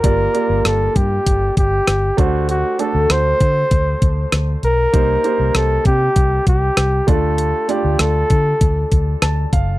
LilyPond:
<<
  \new Staff \with { instrumentName = "Flugelhorn" } { \time 4/4 \key g \minor \tempo 4 = 98 bes'4 a'8 g'4 g'4 fis'8 | fis'8 a'8 c''2 r8 bes'8~ | bes'4 a'8 g'4 g'4 a'8~ | a'8 g'8 a'2 r4 | }
  \new Staff \with { instrumentName = "Grand piano" } { \time 4/4 \key g \minor <bes f' g' d''>8 <bes f' g' d''>2 r4 <a d' fis' c''>8~ | <a d' fis' c''>8 <a d' fis' a'>2 r4. | <bes ees' g' c''>8 <bes ees' g' c''>2 r4 <a d' f' d''>8~ | <a d' f' d''>8 <a d' f' d''>2 r8 a''8 f''8 | }
  \new Staff \with { instrumentName = "Fingered electric bass" } { \clef bass \time 4/4 \key g \minor g,,8 r16 g,,16 g,,8 g,8 g,,8 g,,8 g,,8 d,8~ | d,8 r16 d,16 d,8 d8 d,8 d,8 d,8 b,,8 | c,8 r16 c,16 c,8 c8 c,8 c,8 c,8 d,8~ | d,8 r16 d,16 d,8 d8 d,8 d,8 d,8 fis,,8 | }
  \new DrumStaff \with { instrumentName = "Drums" } \drummode { \time 4/4 <hh bd>8 hh8 <hh ss>8 <hh bd>8 <hh bd>8 <hh bd>8 <hh ss>8 <hh bd>8 | hh8 hh8 <hh ss>8 <hh bd>8 <hh bd>8 <hh bd>8 <hh ss>8 hh8 | <hh bd>8 hh8 <hh ss>8 <hh bd>8 <hh bd>8 <hh bd>8 <hh ss>8 <hh bd>8 | hh8 hh8 <hh ss>8 <hh bd>8 <hh bd>8 <hh bd>8 <hh ss>8 <hh bd>8 | }
>>